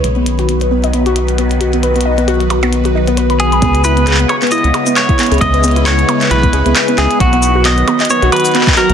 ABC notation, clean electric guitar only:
X:1
M:4/4
L:1/8
Q:"Swing 16ths" 1/4=134
K:C#m
V:1 name="Clean electric guitar"
z8 | z6 z G- | G B2 c d2 c2 | d2 c2 B3 G |
F2 d2 c B2 ^A |]